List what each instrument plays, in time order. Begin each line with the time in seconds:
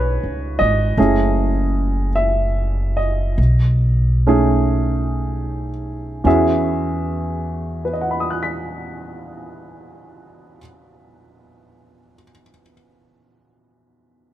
Already playing: upright bass B1, upright piano A3 C#4 D#4 G#4 B4 C#5 D#5
0.23 upright bass C#2
0.59 upright bass G#1, upright piano D#5
0.97 upright bass F#1, upright piano A3 C#4 E4 G#4
2.15 upright piano E5
2.97 upright piano D#5
3.38 upright bass B1
4.27 upright piano A3 C#4 D#4 G#4
6.24 upright piano E2 E3 C#4 F#4 G#4 E5, upright bass E2
7.85 upright piano B4
7.93 upright piano D#5
8.01 upright piano F#5
8.11 upright piano B5
8.20 upright piano D#6
8.30 upright piano F#6
8.43 upright piano B6